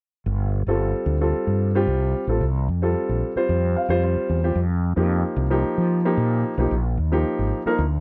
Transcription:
0.26 0.65 G1 medium
0.67 0.92 G1 medium
0.67 1.16 G3 medium
0.67 1.16 C4 medium
0.67 1.17 F4 medium
0.67 1.17 A4 medium
1.06 1.32 D2 medium
1.21 1.70 G3 medium
1.21 1.70 C4 medium
1.21 1.70 F4 medium
1.21 1.70 A4 medium
1.34 muted fretless electric bass stroke soft
1.47 1.86 G2 medium
1.75 2.24 G3 medium
1.75 2.24 C4 medium
1.75 2.24 F4 medium
1.75 2.24 G4 medium
1.87 2.13 C2 medium
2.27 2.40 A1 medium
2.27 2.42 G3 medium
2.27 2.42 C4 medium
2.27 2.42 F4 medium
2.27 2.42 A4 medium
2.41 2.67 C2 medium
2.68 2.94 F2 medium
2.82 3.31 G3 medium
2.82 3.31 C4 medium
2.82 3.31 F4 medium
2.82 3.31 A4 medium
3.09 3.22 A#1 medium
3.36 3.85 G3 medium
3.36 3.85 C4 medium
3.36 3.85 F4 medium
3.36 3.85 C5 medium
3.36 muted fretless electric bass stroke soft
3.49 3.75 F2 medium
3.76 4.01 F5 medium
3.89 4.15 F2 medium
3.89 4.38 G3 medium
3.89 4.38 C4 medium
3.89 4.38 F4 medium
3.89 4.02 C5 medium
4.03 4.53 C5 medium
4.16 muted fretless electric bass stroke soft
4.29 4.55 E2 medium
4.43 4.57 G3 medium
4.43 4.57 C4 medium
4.43 4.57 F4 medium
4.43 4.57 G4 medium
4.55 4.94 F2 medium
4.96 5.22 F2 medium
4.96 5.45 F3 medium
4.96 5.46 A#3 medium
4.96 5.46 D#4 medium
4.96 5.46 G4 medium
5.36 5.62 C2 medium
5.50 5.99 F3 medium
5.50 5.99 A#3 medium
5.50 6.00 D#4 medium
5.50 6.00 G4 medium
5.64 muted fretless electric bass stroke soft
5.78 6.16 F3 medium
6.05 6.53 F3 medium
6.05 6.53 A#3 medium
6.05 6.54 D#4 medium
6.05 6.54 G4 medium
6.17 6.43 A#2 medium
6.58 6.70 B1 medium
6.58 6.71 F3 medium
6.58 6.72 A#3 medium
6.58 6.72 D#4 medium
6.58 6.72 G4 medium
6.71 6.97 A#1 medium
6.98 7.23 D#2 medium
7.12 7.60 F3 medium
7.12 7.60 A#3 medium
7.12 7.61 D#4 medium
7.12 7.61 G4 medium
7.39 7.51 G#1 medium
7.65 7.79 F3 medium
7.65 7.79 A#3 medium
7.65 7.79 D#4 medium
7.65 7.79 A#4 medium
7.65 muted fretless electric bass stroke soft
7.79 8.00 D2 medium

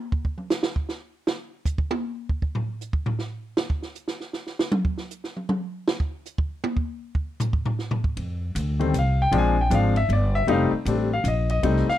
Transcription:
0.12 kick medium
0.25 kick medium
0.38 mid tom soft
0.50 snare loud
0.50 hi-hat pedal medium
0.63 snare loud
0.76 kick medium
0.89 snare medium
1.27 snare medium
1.65 kick medium
1.65 hi-hat pedal medium
1.78 kick loud
1.91 high tom loud
2.29 kick medium
2.42 kick medium
2.55 floor tom medium
2.81 hi-hat pedal medium
2.93 kick medium
3.06 floor tom loud
3.19 snare soft
3.57 snare loud
3.70 kick medium
3.82 snare soft
3.95 hi-hat pedal medium
4.08 snare medium
4.20 snare soft
4.33 snare medium
4.47 snare soft
4.59 snare loud
4.72 mid tom loud
4.85 kick medium
4.98 snare soft
5.11 hi-hat pedal medium
5.24 snare soft
5.37 mid tom soft
5.49 mid tom loud
5.88 snare loud
6.00 kick medium
6.25 hi-hat pedal medium
6.38 kick loud
6.64 high tom loud
6.77 kick medium
7.15 kick medium
7.40 floor tom loud
7.40 hi-hat pedal medium
7.53 kick medium
7.66 floor tom loud
7.79 snare soft
7.91 floor tom loud
8.04 kick medium
8.17 8.54 F2 medium
8.17 kick soft
8.17 ride medium
8.55 8.93 D2 loud
8.55 kick soft
8.55 hi-hat pedal medium
8.55 ride medium
8.80 8.92 D#3 medium
8.80 8.93 G3 medium
8.80 8.92 A3 medium
8.80 8.93 C4 medium
8.80 ride soft
8.94 9.31 C2 medium
8.94 kick soft
8.94 hi-hat pedal medium
8.94 ride medium
8.99 9.20 F5 medium
9.22 9.34 G5 loud
9.32 9.69 A#1 medium
9.32 9.54 F3 medium
9.32 9.55 G#3 medium
9.32 9.55 C4 medium
9.32 9.55 D4 medium
9.32 kick soft
9.32 ride medium
9.38 9.59 G#5 medium
9.61 9.73 G5 medium
9.70 10.08 G#1 loud
9.70 9.93 F3 medium
9.70 9.93 G#3 medium
9.70 9.93 C4 medium
9.70 9.93 D4 medium
9.70 kick soft
9.70 hi-hat pedal medium
9.70 ride medium
9.74 9.97 F5 medium
9.96 10.10 E5 loud
9.96 ride soft
10.09 10.46 G1 medium
10.09 kick soft
10.09 ride medium
10.13 10.35 D5 medium
10.35 10.48 E5 loud
10.47 10.70 F1 medium
10.47 10.70 G3 medium
10.47 10.70 A3 medium
10.47 10.70 C4 medium
10.47 10.71 D#4 loud
10.47 kick soft
10.47 ride medium
10.51 10.65 F5 medium
10.72 muted upright bass stroke soft
10.85 11.23 A1 loud
10.85 11.09 G3 medium
10.85 11.09 A3 medium
10.85 11.09 C4 medium
10.85 11.09 D4 medium
10.85 kick soft
10.85 hi-hat pedal medium
10.85 ride medium
11.13 11.26 F5 loud
11.24 11.62 A#1 loud
11.24 11.49 D#5 medium
11.24 kick soft
11.24 hi-hat pedal medium
11.24 ride medium
11.49 11.86 D#5 loud
11.49 ride medium
11.63 11.86 C2 medium
11.63 11.85 G3 medium
11.63 11.85 A3 medium
11.63 11.85 C4 medium
11.63 11.85 D#4 medium
11.63 kick soft
11.63 ride medium
11.77 snare soft
11.88 11.98 F5 loud
11.88 muted upright bass stroke soft
11.88 snare soft

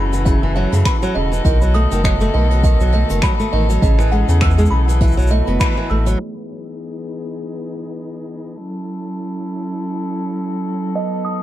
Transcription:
0.00 0.38 F#1 medium
0.00 0.11 C#3 medium
0.00 1.42 E3 medium
0.00 1.42 C#4 medium
0.00 3.78 F#4 medium
0.00 6.16 A4 medium
0.00 0.14 B5 medium
0.13 0.25 E3 medium
0.13 closed hi-hat medium
0.13 shaker medium
0.25 0.41 C#3 medium
0.25 0.54 E5 medium
0.25 kick loud
0.25 closed hi-hat medium
0.25 shaker medium
0.43 0.67 F#1 medium
0.43 0.54 E3 medium
0.55 0.71 F#3 medium
0.55 0.74 E5 medium
0.55 closed hi-hat soft
0.72 0.83 F#2 medium
0.72 0.84 C#3 medium
0.72 closed hi-hat medium
0.72 shaker medium
0.79 closed hi-hat soft
0.85 0.95 E3 medium
0.85 1.14 B5 loud
0.85 finger snap medium
0.85 kick medium
0.85 closed hi-hat medium
0.85 shaker medium
0.94 closed hi-hat soft
1.02 1.14 F#3 loud
1.02 shaker soft
1.15 1.41 E1 medium
1.15 1.30 C#3 medium
1.15 1.33 D#5 medium
1.32 1.43 E3 medium
1.32 shaker medium
1.45 1.87 B1 loud
1.45 3.80 D#3 medium
1.45 1.60 D#3 medium
1.45 3.80 B3 medium
1.45 1.73 D#5 medium
1.45 kick loud
1.45 closed hi-hat medium
1.45 shaker medium
1.62 1.73 F#3 medium
1.62 shaker soft
1.74 1.90 A3 medium
1.74 1.93 D#6 loud
1.74 closed hi-hat medium
1.91 2.31 F#1 medium
1.91 2.03 D#3 medium
1.91 closed hi-hat medium
1.91 shaker medium
2.04 2.14 F#3 medium
2.04 2.32 D#5 medium
2.04 finger snap loud
2.04 kick loud
2.04 closed hi-hat medium
2.04 shaker medium
2.21 2.33 A3 loud
2.21 shaker medium
2.34 2.76 B1 medium
2.34 2.49 D#3 medium
2.34 2.62 D#5 medium
2.51 2.62 F#3 medium
2.51 closed hi-hat medium
2.64 2.79 D#3 medium
2.64 2.92 D#5 medium
2.64 kick loud
2.64 closed hi-hat medium
2.64 shaker medium
2.80 3.04 B1 medium
2.80 2.92 F#3 medium
2.80 shaker soft
2.92 3.09 A3 medium
2.92 3.12 D#5 medium
2.92 closed hi-hat soft
3.10 3.21 F#1 medium
3.10 3.22 D#3 medium
3.10 closed hi-hat medium
3.10 shaker medium
3.22 3.32 F#3 medium
3.22 3.51 B5 loud
3.22 finger snap loud
3.22 kick loud
3.22 closed hi-hat medium
3.22 shaker medium
3.40 3.51 A3 loud
3.40 shaker medium
3.53 3.78 A1 medium
3.53 3.68 D#3 medium
3.53 3.81 D#5 loud
3.70 3.81 F#3 medium
3.70 closed hi-hat medium
3.70 shaker medium
3.82 4.24 A1 loud
3.82 3.97 C#3 medium
3.82 5.00 E3 medium
3.82 5.00 C#4 medium
3.82 5.00 G#4 medium
3.82 4.11 D#5 medium
3.82 kick loud
3.82 closed hi-hat medium
3.82 shaker medium
3.99 4.10 E3 medium
3.99 finger snap soft
3.99 shaker medium
4.12 4.27 G#3 medium
4.12 4.40 F#5 medium
4.12 closed hi-hat soft
4.28 4.68 E2 medium
4.28 4.40 C#3 medium
4.28 closed hi-hat medium
4.28 shaker medium
4.41 4.51 E3 medium
4.41 4.70 E6 loud
4.41 finger snap loud
4.41 kick loud
4.41 closed hi-hat medium
4.41 shaker soft
4.50 shaker soft
4.58 4.70 G#3 loud
4.58 shaker medium
4.58 shaker soft
4.65 shaker soft
4.71 5.13 B1 medium
4.71 4.86 C#3 medium
4.71 4.89 B5 medium
4.88 5.00 E3 medium
4.88 closed hi-hat medium
4.88 shaker medium
5.00 6.18 E3 medium
5.00 5.16 E3 medium
5.00 6.18 B3 medium
5.00 6.19 F#4 medium
5.00 5.30 E5 medium
5.00 kick loud
5.00 closed hi-hat medium
5.00 shaker soft
5.07 shaker soft
5.11 shaker soft
5.17 5.42 B1 medium
5.17 5.29 F#3 medium
5.17 shaker medium
5.21 shaker medium
5.27 5.46 A3 medium
5.27 5.59 D#5 medium
5.27 closed hi-hat medium
5.27 shaker medium
5.47 5.58 F#1 medium
5.47 5.60 B3 medium
5.47 closed hi-hat medium
5.60 5.75 E3 medium
5.60 5.89 B5 medium
5.60 finger snap medium
5.60 kick medium
5.60 closed hi-hat medium
5.60 shaker medium
5.77 5.89 E3 medium
5.90 6.16 A1 medium
5.90 6.05 A3 medium
5.90 6.18 E6 medium
6.06 6.18 F#3 medium
6.06 closed hi-hat medium
6.06 shaker medium
6.19 8.55 E3 medium
6.19 8.55 B3 medium
6.19 8.55 D#4 medium
6.19 8.55 G#4 medium
6.19 shaker soft
8.46 shaker medium
8.56 11.43 F#3 medium
8.56 10.92 C#4 medium
8.56 10.92 E4 medium
8.56 11.43 A4 medium
8.56 shaker medium
9.04 shaker medium
9.17 shaker medium
9.34 shaker soft
9.63 shaker medium
9.76 shaker medium
9.92 shaker soft
10.23 shaker medium
10.35 shaker medium
10.52 shaker soft
10.82 shaker medium
10.95 11.43 B3 medium
10.95 11.43 D#4 medium
10.95 11.24 D#5 medium
10.95 shaker soft
11.01 shaker soft
11.06 shaker soft
11.12 shaker soft
11.15 shaker soft
11.21 11.43 D#6 medium
11.21 shaker soft

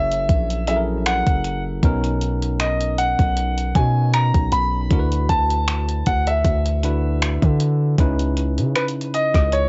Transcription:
0.00 0.28 F#1 loud
0.00 0.20 F#3 medium
0.00 0.20 C#4 medium
0.00 0.20 E4 medium
0.00 0.20 G#4 medium
0.00 0.24 A#4 medium
0.00 0.64 E5 medium
0.12 closed hi-hat medium
0.29 1.23 A#1 loud
0.29 kick medium
0.29 closed hi-hat medium
0.50 closed hi-hat medium
0.68 1.76 F#3 medium
0.68 1.76 C#4 medium
0.68 1.76 E4 medium
0.68 1.77 G#4 medium
0.68 0.76 A4 medium
0.68 0.77 E5 medium
0.68 closed hi-hat medium
0.76 1.80 A#4 medium
1.06 1.62 F#5 medium
1.06 finger snap loud
1.06 closed hi-hat medium
1.27 1.81 F#1 medium
1.27 kick medium
1.27 closed hi-hat soft
1.45 closed hi-hat medium
1.83 3.15 B1 loud
1.83 3.27 B2 medium
1.83 3.27 B3 medium
1.83 3.28 C#4 medium
1.83 3.28 D#4 medium
1.83 3.28 A#4 loud
1.83 kick loud
1.83 closed hi-hat medium
2.04 closed hi-hat soft
2.21 closed hi-hat medium
2.42 closed hi-hat soft
2.60 2.96 D#5 medium
2.60 finger snap loud
2.60 closed hi-hat medium
2.81 closed hi-hat medium
2.98 3.78 F#5 medium
2.98 closed hi-hat medium
3.19 3.73 B1 loud
3.19 kick medium
3.19 closed hi-hat medium
3.37 closed hi-hat medium
3.58 closed hi-hat medium
3.75 4.32 B2 loud
3.75 4.84 B2 medium
3.75 4.84 B3 medium
3.75 4.84 C#4 medium
3.75 4.84 D#4 medium
3.75 4.85 F#4 medium
3.75 4.15 G#5 medium
3.75 kick loud
3.75 closed hi-hat medium
4.14 4.50 A#5 loud
4.14 finger snap loud
4.14 closed hi-hat medium
4.34 4.51 B1 medium
4.34 kick loud
4.34 closed hi-hat soft
4.52 4.89 B1 loud
4.52 5.32 B5 loud
4.52 closed hi-hat medium
4.90 5.28 D2 loud
4.90 6.35 D3 medium
4.90 6.35 D4 medium
4.90 6.36 E4 medium
4.90 6.36 F#4 medium
4.90 4.99 A#4 medium
4.90 kick loud
4.90 closed hi-hat medium
4.99 6.39 B4 medium
5.12 closed hi-hat soft
5.29 6.03 D2 loud
5.29 6.08 A5 loud
5.29 kick medium
5.29 closed hi-hat medium
5.50 closed hi-hat soft
5.68 finger snap loud
5.68 closed hi-hat medium
5.89 closed hi-hat soft
6.06 6.43 D2 medium
6.06 6.28 F#5 medium
6.06 kick medium
6.06 closed hi-hat medium
6.27 7.56 E5 medium
6.27 closed hi-hat medium
6.44 7.38 D2 loud
6.44 kick medium
6.44 closed hi-hat medium
6.66 closed hi-hat medium
6.83 7.91 D3 medium
6.83 7.91 D4 medium
6.83 7.92 E4 medium
6.83 7.92 F#4 medium
6.83 7.92 B4 medium
6.83 closed hi-hat medium
7.22 finger snap loud
7.22 closed hi-hat medium
7.42 7.96 D3 loud
7.42 kick medium
7.42 closed hi-hat soft
7.60 closed hi-hat medium
7.98 8.59 C#2 loud
7.98 9.43 C#3 medium
7.98 9.43 C#4 medium
7.98 9.43 D#4 medium
7.98 9.43 E4 medium
7.98 9.44 B4 medium
7.98 kick loud
7.98 closed hi-hat medium
8.19 closed hi-hat soft
8.37 closed hi-hat medium
8.58 8.75 C#3 medium
8.58 closed hi-hat soft
8.75 8.84 B4 medium
8.75 finger snap loud
8.75 closed hi-hat medium
8.88 closed hi-hat medium
9.01 closed hi-hat soft
9.14 9.54 D#5 loud
9.14 closed hi-hat medium
9.34 9.69 C#2 loud
9.34 kick medium
9.34 cross-stick medium
9.34 closed hi-hat medium
9.52 9.69 C#5 medium
9.52 closed hi-hat medium

